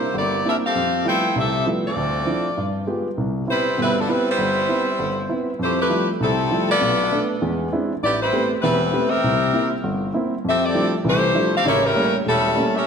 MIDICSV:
0, 0, Header, 1, 3, 480
1, 0, Start_track
1, 0, Key_signature, 0, "major"
1, 0, Tempo, 302877
1, 1179, Time_signature, 4, 2, 24, 8
1, 20392, End_track
2, 0, Start_track
2, 0, Title_t, "Saxophone section"
2, 0, Program_c, 0, 65
2, 0, Note_on_c, 0, 58, 68
2, 0, Note_on_c, 0, 64, 67
2, 0, Note_on_c, 0, 67, 68
2, 0, Note_on_c, 0, 72, 81
2, 237, Note_off_c, 0, 64, 0
2, 239, Note_off_c, 0, 72, 0
2, 241, Note_off_c, 0, 67, 0
2, 244, Note_off_c, 0, 58, 0
2, 276, Note_on_c, 0, 58, 73
2, 286, Note_on_c, 0, 64, 72
2, 289, Note_on_c, 0, 67, 72
2, 289, Note_on_c, 0, 74, 83
2, 696, Note_off_c, 0, 58, 0
2, 701, Note_off_c, 0, 64, 0
2, 703, Note_off_c, 0, 67, 0
2, 703, Note_off_c, 0, 74, 0
2, 769, Note_on_c, 0, 62, 70
2, 770, Note_on_c, 0, 70, 74
2, 772, Note_on_c, 0, 76, 85
2, 778, Note_on_c, 0, 67, 75
2, 886, Note_off_c, 0, 62, 0
2, 887, Note_off_c, 0, 70, 0
2, 888, Note_off_c, 0, 76, 0
2, 893, Note_off_c, 0, 67, 0
2, 1052, Note_on_c, 0, 77, 89
2, 1055, Note_on_c, 0, 60, 76
2, 1058, Note_on_c, 0, 67, 77
2, 1063, Note_on_c, 0, 69, 73
2, 1645, Note_off_c, 0, 77, 0
2, 1646, Note_off_c, 0, 60, 0
2, 1648, Note_off_c, 0, 67, 0
2, 1650, Note_off_c, 0, 69, 0
2, 1710, Note_on_c, 0, 72, 71
2, 1712, Note_on_c, 0, 79, 86
2, 1713, Note_on_c, 0, 64, 77
2, 1719, Note_on_c, 0, 69, 80
2, 2134, Note_off_c, 0, 72, 0
2, 2135, Note_off_c, 0, 79, 0
2, 2136, Note_off_c, 0, 64, 0
2, 2139, Note_off_c, 0, 69, 0
2, 2190, Note_on_c, 0, 60, 74
2, 2193, Note_on_c, 0, 67, 78
2, 2195, Note_on_c, 0, 69, 79
2, 2195, Note_on_c, 0, 76, 95
2, 2647, Note_off_c, 0, 60, 0
2, 2648, Note_off_c, 0, 67, 0
2, 2649, Note_off_c, 0, 69, 0
2, 2649, Note_off_c, 0, 76, 0
2, 2966, Note_on_c, 0, 60, 67
2, 2968, Note_on_c, 0, 65, 70
2, 2968, Note_on_c, 0, 74, 84
2, 2977, Note_on_c, 0, 69, 74
2, 4025, Note_off_c, 0, 60, 0
2, 4031, Note_off_c, 0, 69, 0
2, 4322, Note_off_c, 0, 65, 0
2, 4322, Note_off_c, 0, 74, 0
2, 5560, Note_on_c, 0, 71, 81
2, 5561, Note_on_c, 0, 72, 91
2, 5569, Note_on_c, 0, 55, 73
2, 5570, Note_on_c, 0, 64, 78
2, 5982, Note_off_c, 0, 71, 0
2, 5983, Note_off_c, 0, 72, 0
2, 5987, Note_off_c, 0, 55, 0
2, 5987, Note_off_c, 0, 64, 0
2, 6036, Note_on_c, 0, 64, 86
2, 6038, Note_on_c, 0, 60, 80
2, 6040, Note_on_c, 0, 55, 80
2, 6041, Note_on_c, 0, 71, 99
2, 6288, Note_off_c, 0, 64, 0
2, 6289, Note_off_c, 0, 60, 0
2, 6290, Note_off_c, 0, 55, 0
2, 6291, Note_off_c, 0, 71, 0
2, 6332, Note_on_c, 0, 53, 74
2, 6339, Note_on_c, 0, 59, 69
2, 6341, Note_on_c, 0, 69, 83
2, 6346, Note_on_c, 0, 62, 73
2, 6492, Note_off_c, 0, 53, 0
2, 6496, Note_off_c, 0, 59, 0
2, 6497, Note_off_c, 0, 69, 0
2, 6499, Note_off_c, 0, 62, 0
2, 6513, Note_on_c, 0, 71, 84
2, 6516, Note_on_c, 0, 64, 78
2, 6517, Note_on_c, 0, 55, 80
2, 6520, Note_on_c, 0, 60, 74
2, 6786, Note_off_c, 0, 71, 0
2, 6787, Note_off_c, 0, 64, 0
2, 6788, Note_off_c, 0, 55, 0
2, 6789, Note_off_c, 0, 60, 0
2, 6821, Note_on_c, 0, 55, 74
2, 6823, Note_on_c, 0, 72, 86
2, 6824, Note_on_c, 0, 71, 76
2, 6826, Note_on_c, 0, 64, 74
2, 8354, Note_off_c, 0, 55, 0
2, 8355, Note_off_c, 0, 71, 0
2, 8355, Note_off_c, 0, 72, 0
2, 8357, Note_off_c, 0, 64, 0
2, 8920, Note_on_c, 0, 64, 68
2, 8925, Note_on_c, 0, 72, 85
2, 8926, Note_on_c, 0, 57, 78
2, 8927, Note_on_c, 0, 67, 72
2, 9170, Note_off_c, 0, 64, 0
2, 9173, Note_off_c, 0, 72, 0
2, 9174, Note_off_c, 0, 57, 0
2, 9174, Note_off_c, 0, 67, 0
2, 9209, Note_on_c, 0, 57, 68
2, 9212, Note_on_c, 0, 71, 79
2, 9215, Note_on_c, 0, 64, 75
2, 9222, Note_on_c, 0, 67, 73
2, 9634, Note_off_c, 0, 57, 0
2, 9635, Note_off_c, 0, 71, 0
2, 9637, Note_off_c, 0, 64, 0
2, 9641, Note_off_c, 0, 67, 0
2, 9875, Note_on_c, 0, 55, 77
2, 9875, Note_on_c, 0, 69, 88
2, 9877, Note_on_c, 0, 64, 76
2, 9879, Note_on_c, 0, 60, 81
2, 10573, Note_off_c, 0, 55, 0
2, 10573, Note_off_c, 0, 69, 0
2, 10574, Note_off_c, 0, 64, 0
2, 10576, Note_off_c, 0, 60, 0
2, 10626, Note_on_c, 0, 59, 84
2, 10626, Note_on_c, 0, 74, 105
2, 10627, Note_on_c, 0, 65, 87
2, 10628, Note_on_c, 0, 69, 89
2, 11509, Note_off_c, 0, 74, 0
2, 11510, Note_off_c, 0, 59, 0
2, 11510, Note_off_c, 0, 65, 0
2, 11511, Note_off_c, 0, 69, 0
2, 12741, Note_on_c, 0, 74, 87
2, 12744, Note_on_c, 0, 64, 78
2, 12744, Note_on_c, 0, 67, 79
2, 12748, Note_on_c, 0, 59, 78
2, 12998, Note_off_c, 0, 74, 0
2, 12999, Note_off_c, 0, 67, 0
2, 13000, Note_off_c, 0, 64, 0
2, 13002, Note_off_c, 0, 59, 0
2, 13024, Note_on_c, 0, 64, 72
2, 13025, Note_on_c, 0, 55, 70
2, 13029, Note_on_c, 0, 72, 82
2, 13032, Note_on_c, 0, 71, 76
2, 13458, Note_off_c, 0, 64, 0
2, 13459, Note_off_c, 0, 55, 0
2, 13461, Note_off_c, 0, 72, 0
2, 13462, Note_off_c, 0, 71, 0
2, 13656, Note_on_c, 0, 60, 82
2, 13656, Note_on_c, 0, 71, 92
2, 13657, Note_on_c, 0, 64, 80
2, 13663, Note_on_c, 0, 55, 84
2, 14379, Note_off_c, 0, 60, 0
2, 14379, Note_off_c, 0, 71, 0
2, 14380, Note_off_c, 0, 64, 0
2, 14383, Note_off_c, 0, 55, 0
2, 14422, Note_on_c, 0, 76, 99
2, 14427, Note_on_c, 0, 60, 90
2, 14428, Note_on_c, 0, 67, 84
2, 14430, Note_on_c, 0, 70, 83
2, 15389, Note_off_c, 0, 76, 0
2, 15391, Note_off_c, 0, 60, 0
2, 15391, Note_off_c, 0, 67, 0
2, 15392, Note_off_c, 0, 70, 0
2, 16612, Note_on_c, 0, 69, 82
2, 16614, Note_on_c, 0, 60, 87
2, 16615, Note_on_c, 0, 76, 102
2, 16620, Note_on_c, 0, 67, 85
2, 16853, Note_off_c, 0, 60, 0
2, 16853, Note_off_c, 0, 69, 0
2, 16854, Note_off_c, 0, 76, 0
2, 16857, Note_off_c, 0, 67, 0
2, 16885, Note_on_c, 0, 74, 98
2, 16891, Note_on_c, 0, 60, 79
2, 16893, Note_on_c, 0, 69, 83
2, 16898, Note_on_c, 0, 67, 78
2, 17339, Note_off_c, 0, 74, 0
2, 17342, Note_off_c, 0, 60, 0
2, 17343, Note_off_c, 0, 69, 0
2, 17346, Note_off_c, 0, 67, 0
2, 17563, Note_on_c, 0, 57, 84
2, 17563, Note_on_c, 0, 64, 81
2, 17564, Note_on_c, 0, 72, 98
2, 17566, Note_on_c, 0, 67, 89
2, 18253, Note_off_c, 0, 57, 0
2, 18253, Note_off_c, 0, 64, 0
2, 18253, Note_off_c, 0, 72, 0
2, 18255, Note_off_c, 0, 67, 0
2, 18327, Note_on_c, 0, 60, 89
2, 18329, Note_on_c, 0, 69, 79
2, 18331, Note_on_c, 0, 67, 84
2, 18333, Note_on_c, 0, 77, 106
2, 18484, Note_off_c, 0, 60, 0
2, 18485, Note_off_c, 0, 69, 0
2, 18486, Note_off_c, 0, 67, 0
2, 18487, Note_off_c, 0, 77, 0
2, 18504, Note_on_c, 0, 73, 97
2, 18510, Note_on_c, 0, 67, 86
2, 18511, Note_on_c, 0, 58, 91
2, 18515, Note_on_c, 0, 64, 92
2, 18756, Note_off_c, 0, 73, 0
2, 18760, Note_off_c, 0, 67, 0
2, 18761, Note_off_c, 0, 58, 0
2, 18763, Note_off_c, 0, 64, 0
2, 18789, Note_on_c, 0, 55, 83
2, 18794, Note_on_c, 0, 64, 85
2, 18798, Note_on_c, 0, 61, 89
2, 18799, Note_on_c, 0, 70, 97
2, 19250, Note_off_c, 0, 55, 0
2, 19252, Note_off_c, 0, 64, 0
2, 19255, Note_off_c, 0, 61, 0
2, 19255, Note_off_c, 0, 70, 0
2, 19464, Note_on_c, 0, 69, 99
2, 19467, Note_on_c, 0, 55, 87
2, 19472, Note_on_c, 0, 64, 85
2, 19480, Note_on_c, 0, 61, 88
2, 20162, Note_off_c, 0, 69, 0
2, 20164, Note_off_c, 0, 55, 0
2, 20167, Note_off_c, 0, 64, 0
2, 20171, Note_off_c, 0, 61, 0
2, 20223, Note_on_c, 0, 70, 85
2, 20224, Note_on_c, 0, 67, 76
2, 20225, Note_on_c, 0, 76, 93
2, 20233, Note_on_c, 0, 61, 87
2, 20392, Note_off_c, 0, 61, 0
2, 20392, Note_off_c, 0, 67, 0
2, 20392, Note_off_c, 0, 70, 0
2, 20392, Note_off_c, 0, 76, 0
2, 20392, End_track
3, 0, Start_track
3, 0, Title_t, "Grand piano"
3, 0, Program_c, 1, 0
3, 224, Note_on_c, 1, 31, 59
3, 634, Note_off_c, 1, 31, 0
3, 716, Note_on_c, 1, 58, 49
3, 718, Note_on_c, 1, 60, 43
3, 724, Note_on_c, 1, 62, 41
3, 727, Note_on_c, 1, 64, 52
3, 1021, Note_off_c, 1, 58, 0
3, 1023, Note_off_c, 1, 60, 0
3, 1025, Note_off_c, 1, 62, 0
3, 1027, Note_off_c, 1, 64, 0
3, 1194, Note_on_c, 1, 41, 58
3, 1600, Note_off_c, 1, 41, 0
3, 1663, Note_on_c, 1, 53, 49
3, 1666, Note_on_c, 1, 55, 42
3, 1671, Note_on_c, 1, 59, 40
3, 1673, Note_on_c, 1, 64, 51
3, 1674, Note_on_c, 1, 57, 42
3, 1976, Note_off_c, 1, 53, 0
3, 1978, Note_off_c, 1, 55, 0
3, 1980, Note_off_c, 1, 59, 0
3, 1981, Note_off_c, 1, 57, 0
3, 1981, Note_off_c, 1, 64, 0
3, 2149, Note_on_c, 1, 36, 57
3, 2558, Note_off_c, 1, 36, 0
3, 2628, Note_on_c, 1, 53, 48
3, 2634, Note_on_c, 1, 55, 42
3, 2634, Note_on_c, 1, 57, 44
3, 2635, Note_on_c, 1, 59, 42
3, 2640, Note_on_c, 1, 64, 49
3, 2939, Note_off_c, 1, 53, 0
3, 2942, Note_off_c, 1, 55, 0
3, 2942, Note_off_c, 1, 57, 0
3, 2943, Note_off_c, 1, 59, 0
3, 2945, Note_off_c, 1, 64, 0
3, 3109, Note_on_c, 1, 38, 58
3, 3519, Note_off_c, 1, 38, 0
3, 3582, Note_on_c, 1, 60, 40
3, 3584, Note_on_c, 1, 53, 45
3, 3588, Note_on_c, 1, 62, 45
3, 3596, Note_on_c, 1, 64, 50
3, 3897, Note_off_c, 1, 60, 0
3, 3898, Note_off_c, 1, 53, 0
3, 3900, Note_off_c, 1, 62, 0
3, 3904, Note_off_c, 1, 64, 0
3, 4078, Note_on_c, 1, 43, 59
3, 4484, Note_off_c, 1, 43, 0
3, 4546, Note_on_c, 1, 56, 47
3, 4551, Note_on_c, 1, 59, 47
3, 4552, Note_on_c, 1, 65, 43
3, 4555, Note_on_c, 1, 67, 54
3, 4860, Note_off_c, 1, 56, 0
3, 4862, Note_off_c, 1, 59, 0
3, 4863, Note_off_c, 1, 65, 0
3, 4864, Note_off_c, 1, 67, 0
3, 5032, Note_on_c, 1, 36, 58
3, 5442, Note_off_c, 1, 36, 0
3, 5503, Note_on_c, 1, 59, 45
3, 5503, Note_on_c, 1, 60, 43
3, 5515, Note_on_c, 1, 64, 50
3, 5819, Note_off_c, 1, 59, 0
3, 5819, Note_off_c, 1, 60, 0
3, 5825, Note_off_c, 1, 64, 0
3, 5992, Note_on_c, 1, 47, 57
3, 5994, Note_on_c, 1, 31, 62
3, 6402, Note_off_c, 1, 47, 0
3, 6403, Note_off_c, 1, 31, 0
3, 6464, Note_on_c, 1, 59, 48
3, 6467, Note_on_c, 1, 60, 46
3, 6472, Note_on_c, 1, 64, 55
3, 6780, Note_off_c, 1, 59, 0
3, 6781, Note_off_c, 1, 60, 0
3, 6784, Note_off_c, 1, 64, 0
3, 6945, Note_on_c, 1, 31, 61
3, 7359, Note_off_c, 1, 31, 0
3, 7427, Note_on_c, 1, 59, 46
3, 7431, Note_on_c, 1, 60, 42
3, 7434, Note_on_c, 1, 64, 52
3, 7742, Note_off_c, 1, 59, 0
3, 7743, Note_off_c, 1, 60, 0
3, 7745, Note_off_c, 1, 64, 0
3, 7909, Note_on_c, 1, 31, 60
3, 8321, Note_off_c, 1, 31, 0
3, 8379, Note_on_c, 1, 59, 48
3, 8383, Note_on_c, 1, 60, 47
3, 8395, Note_on_c, 1, 64, 52
3, 8697, Note_off_c, 1, 59, 0
3, 8699, Note_off_c, 1, 60, 0
3, 8705, Note_off_c, 1, 64, 0
3, 8863, Note_on_c, 1, 41, 63
3, 9277, Note_off_c, 1, 41, 0
3, 9344, Note_on_c, 1, 53, 51
3, 9348, Note_on_c, 1, 55, 44
3, 9353, Note_on_c, 1, 57, 47
3, 9357, Note_on_c, 1, 64, 53
3, 9659, Note_off_c, 1, 53, 0
3, 9662, Note_off_c, 1, 55, 0
3, 9664, Note_off_c, 1, 57, 0
3, 9666, Note_off_c, 1, 64, 0
3, 9832, Note_on_c, 1, 36, 61
3, 10242, Note_off_c, 1, 36, 0
3, 10313, Note_on_c, 1, 53, 50
3, 10319, Note_on_c, 1, 55, 49
3, 10319, Note_on_c, 1, 57, 46
3, 10323, Note_on_c, 1, 64, 59
3, 10623, Note_off_c, 1, 53, 0
3, 10626, Note_off_c, 1, 57, 0
3, 10627, Note_off_c, 1, 55, 0
3, 10629, Note_off_c, 1, 64, 0
3, 10793, Note_on_c, 1, 47, 65
3, 10795, Note_on_c, 1, 35, 59
3, 11201, Note_off_c, 1, 47, 0
3, 11203, Note_off_c, 1, 35, 0
3, 11276, Note_on_c, 1, 57, 49
3, 11280, Note_on_c, 1, 59, 47
3, 11288, Note_on_c, 1, 62, 57
3, 11584, Note_off_c, 1, 57, 0
3, 11586, Note_off_c, 1, 59, 0
3, 11590, Note_off_c, 1, 62, 0
3, 11755, Note_on_c, 1, 40, 62
3, 11755, Note_on_c, 1, 56, 63
3, 12162, Note_off_c, 1, 40, 0
3, 12162, Note_off_c, 1, 56, 0
3, 12239, Note_on_c, 1, 56, 50
3, 12242, Note_on_c, 1, 60, 50
3, 12245, Note_on_c, 1, 62, 50
3, 12247, Note_on_c, 1, 64, 60
3, 12545, Note_off_c, 1, 56, 0
3, 12547, Note_off_c, 1, 60, 0
3, 12548, Note_off_c, 1, 62, 0
3, 12549, Note_off_c, 1, 64, 0
3, 12725, Note_on_c, 1, 33, 66
3, 13127, Note_off_c, 1, 33, 0
3, 13194, Note_on_c, 1, 57, 54
3, 13199, Note_on_c, 1, 59, 48
3, 13204, Note_on_c, 1, 60, 51
3, 13207, Note_on_c, 1, 67, 57
3, 13502, Note_off_c, 1, 57, 0
3, 13505, Note_off_c, 1, 59, 0
3, 13507, Note_off_c, 1, 60, 0
3, 13509, Note_off_c, 1, 67, 0
3, 13680, Note_on_c, 1, 28, 61
3, 13681, Note_on_c, 1, 40, 67
3, 14084, Note_off_c, 1, 28, 0
3, 14084, Note_off_c, 1, 40, 0
3, 14150, Note_on_c, 1, 57, 52
3, 14156, Note_on_c, 1, 59, 51
3, 14160, Note_on_c, 1, 60, 53
3, 14164, Note_on_c, 1, 67, 63
3, 14459, Note_off_c, 1, 57, 0
3, 14462, Note_off_c, 1, 59, 0
3, 14464, Note_off_c, 1, 60, 0
3, 14466, Note_off_c, 1, 67, 0
3, 14639, Note_on_c, 1, 36, 62
3, 15043, Note_off_c, 1, 36, 0
3, 15102, Note_on_c, 1, 58, 48
3, 15110, Note_on_c, 1, 60, 46
3, 15117, Note_on_c, 1, 64, 56
3, 15415, Note_off_c, 1, 58, 0
3, 15419, Note_off_c, 1, 60, 0
3, 15422, Note_off_c, 1, 64, 0
3, 15587, Note_on_c, 1, 31, 63
3, 15996, Note_off_c, 1, 31, 0
3, 16063, Note_on_c, 1, 58, 49
3, 16069, Note_on_c, 1, 60, 48
3, 16078, Note_on_c, 1, 64, 57
3, 16375, Note_off_c, 1, 58, 0
3, 16378, Note_off_c, 1, 60, 0
3, 16382, Note_off_c, 1, 64, 0
3, 16554, Note_on_c, 1, 41, 64
3, 16959, Note_off_c, 1, 41, 0
3, 17025, Note_on_c, 1, 53, 48
3, 17028, Note_on_c, 1, 55, 46
3, 17029, Note_on_c, 1, 57, 47
3, 17036, Note_on_c, 1, 62, 48
3, 17038, Note_on_c, 1, 64, 55
3, 17335, Note_off_c, 1, 53, 0
3, 17337, Note_off_c, 1, 55, 0
3, 17337, Note_off_c, 1, 57, 0
3, 17341, Note_off_c, 1, 62, 0
3, 17342, Note_off_c, 1, 64, 0
3, 17503, Note_on_c, 1, 36, 61
3, 17506, Note_on_c, 1, 52, 60
3, 17912, Note_off_c, 1, 36, 0
3, 17914, Note_off_c, 1, 52, 0
3, 17980, Note_on_c, 1, 53, 51
3, 17985, Note_on_c, 1, 57, 47
3, 17986, Note_on_c, 1, 55, 48
3, 17987, Note_on_c, 1, 62, 48
3, 17993, Note_on_c, 1, 64, 60
3, 18292, Note_off_c, 1, 53, 0
3, 18295, Note_off_c, 1, 55, 0
3, 18295, Note_off_c, 1, 57, 0
3, 18296, Note_off_c, 1, 62, 0
3, 18299, Note_off_c, 1, 64, 0
3, 18463, Note_on_c, 1, 33, 69
3, 18464, Note_on_c, 1, 49, 63
3, 18872, Note_off_c, 1, 33, 0
3, 18872, Note_off_c, 1, 49, 0
3, 18941, Note_on_c, 1, 55, 53
3, 18944, Note_on_c, 1, 57, 46
3, 18946, Note_on_c, 1, 58, 48
3, 18954, Note_on_c, 1, 61, 59
3, 19252, Note_off_c, 1, 55, 0
3, 19254, Note_off_c, 1, 57, 0
3, 19255, Note_off_c, 1, 58, 0
3, 19259, Note_off_c, 1, 61, 0
3, 19424, Note_on_c, 1, 28, 63
3, 19832, Note_off_c, 1, 28, 0
3, 19904, Note_on_c, 1, 55, 55
3, 19907, Note_on_c, 1, 57, 48
3, 19909, Note_on_c, 1, 58, 52
3, 19916, Note_on_c, 1, 61, 58
3, 20213, Note_off_c, 1, 55, 0
3, 20215, Note_off_c, 1, 57, 0
3, 20216, Note_off_c, 1, 58, 0
3, 20219, Note_off_c, 1, 61, 0
3, 20392, End_track
0, 0, End_of_file